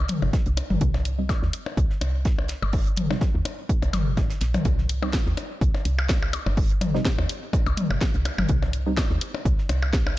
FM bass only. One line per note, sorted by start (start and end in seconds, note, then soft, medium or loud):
0.22 0.29 G1 medium
0.46 0.61 C2 loud
0.70 0.77 G1 medium
0.81 1.35 C2 loud
1.42 1.49 D#2 medium
1.77 1.86 C2 loud
2.01 2.55 C2 medium
2.62 3.15 G1 medium
3.34 3.41 D#2 medium
3.83 3.89 C2 medium
3.93 4.35 G1 medium
4.41 4.57 A#1 medium
4.65 5.19 C2 medium
5.27 5.33 D#2 medium
5.61 5.70 C2 medium
5.85 6.39 C2 medium
6.46 6.99 G1 medium
7.18 7.25 D#2 medium
7.67 7.73 C2 medium
7.90 7.97 G1 medium
8.14 8.29 C2 medium
8.38 8.45 G1 loud
8.49 9.03 C2 medium
9.11 9.17 D#2 medium
9.45 9.54 C2 medium
9.69 10.19 C2 medium